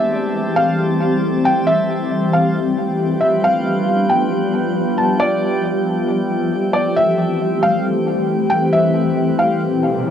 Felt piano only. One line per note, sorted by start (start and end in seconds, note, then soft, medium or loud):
0.00 0.53 E5 medium
0.56 0.77 F5 medium
1.45 1.66 G5 medium
1.67 2.29 E5 medium
2.33 2.54 F5 medium
3.21 3.42 E5 medium
3.44 4.06 F5 medium
4.10 4.30 G5 medium
4.98 5.19 A5 medium
5.20 5.61 D5 medium
6.73 6.95 D5 medium
6.97 7.59 E5 medium
7.63 7.84 F5 medium
8.50 8.71 G5 medium
8.73 9.35 E5 medium
9.39 9.60 F5 medium